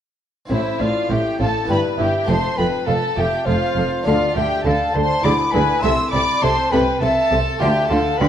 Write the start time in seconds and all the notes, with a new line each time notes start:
0.45 C4 E4
0.50 A1 A2 C4 E4 C5 E5
0.79 A1 A2 C4 F4 D5 F5
1.09 A1 A2 C4 G4 E5 G5
1.38 A1 A2 C4 A4 F5
1.42 A5
1.64 B3 E4 G4
1.68 G1 G2 E4 B4 G5 B5
1.97 G1 G2 E4 G4 E5 G5
2.24 A3 C4 A4
2.28 F1 F2 A4 C5 A5 C6
2.56 F1 F2 A4 B4 G5 B5
2.86 F1 F2 A4 F5 A5
3.16 F1 F2 G4 A4 E5 G5
3.45 F1 F2 F4 A4 C5 F5
3.76 F1 F2 A4
4.02 B3 D4 F4 A4
4.06 D2 D3 A4 D5 F5
4.34 D2 D3 G4 A4 E5 G5
4.64 D2 D3 A4 F5 A5
4.94 D2 D3 A4 C5 A5 C6
5.19 B3 E4 G#4 D5
5.24 D2 D3 G#4 B5 D6
5.52 D2 D3 G#4 B4 G#5 B5
5.79 C2 A3 E4 A4 E5 C6 E6
5.83 C3 A4
6.12 C2 C3 A4 D5 B5 D6
6.42 C2 C3 A4 C5 A5 C6
6.71 C2 C3 A4 B4 G5 B5
7.00 C2 C3 A4 E5 A5
7.31 C2 C3 A4
7.57 D3 A3 F4 G4 A4 E5 G5
7.61 D2 D3
7.89 D2 D3 F4 A4 F5 A5
8.19 D2 D3 F4 B4 G5 B5